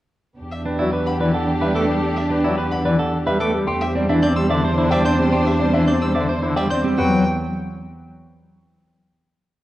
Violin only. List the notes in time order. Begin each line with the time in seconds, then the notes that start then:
0.51 E5
1.06 B5
1.75 D6
2.16 E5
2.71 B5
3.40 D6
3.81 E5
4.22 G6
4.36 E6
4.91 E5
5.05 G6
5.46 E5
5.87 G6
6.02 E6
6.57 E5
6.71 G6
6.98 G5